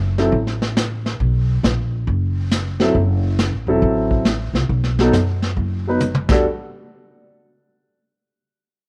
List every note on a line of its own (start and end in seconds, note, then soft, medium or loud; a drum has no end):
0.00 0.28 F#1 medium
0.18 0.31 F#3 medium
0.18 0.32 C4 medium
0.18 0.32 E4 medium
0.18 0.32 A4 medium
0.18 snare soft
0.32 1.16 A1 medium
0.32 brush sweep soft
0.32 kick soft
0.47 snare soft
0.62 snare soft
0.77 snare medium
0.77 hi-hat pedal medium
1.06 snare soft
1.20 1.61 B1 medium
1.20 brush sweep soft
1.20 kick soft
1.63 2.04 A#1 medium
1.63 snare medium
1.63 hi-hat pedal soft
2.07 2.91 F#1 medium
2.07 brush sweep soft
2.07 kick soft
2.51 snare medium
2.51 hi-hat pedal medium
2.80 2.93 F#3 medium
2.80 2.94 C4 medium
2.80 2.94 E4 medium
2.80 2.94 A4 medium
2.80 snare soft
2.95 3.49 F#1 medium
2.95 brush sweep soft
2.95 kick soft
3.39 snare medium
3.39 hi-hat pedal medium
3.52 3.66 A1 medium
3.67 3.81 E1 medium
3.67 4.23 F#3 medium
3.67 4.23 C4 medium
3.67 4.24 E4 medium
3.67 4.24 A4 medium
3.82 4.51 A1 medium
3.82 brush sweep medium
3.82 kick soft
4.11 kick soft
4.25 snare medium
4.25 hi-hat pedal soft
4.53 4.68 C2 medium
4.53 snare soft
4.69 5.10 B1 medium
4.69 brush sweep soft
4.69 kick soft
4.84 snare soft
4.99 5.12 F#3 medium
4.99 5.13 B3 medium
4.99 5.13 D#4 medium
4.99 5.13 A4 medium
4.99 snare soft
5.12 5.53 F#2 medium
5.12 snare medium
5.12 hi-hat pedal medium
5.42 snare soft
5.57 6.25 F#1 medium
5.57 brush sweep medium
5.57 kick soft
5.87 6.00 F#3 medium
5.87 6.00 B3 soft
5.87 6.00 D#4 medium
5.87 6.01 B4 medium
6.00 hi-hat pedal soft
6.00 mid tom soft
6.15 mid tom soft
6.29 6.43 E2 medium
6.29 6.43 G3 medium
6.29 6.43 D4 medium
6.29 6.44 F#4 medium
6.29 6.44 A4 medium
6.29 kick medium
6.29 snare medium
6.29 crash medium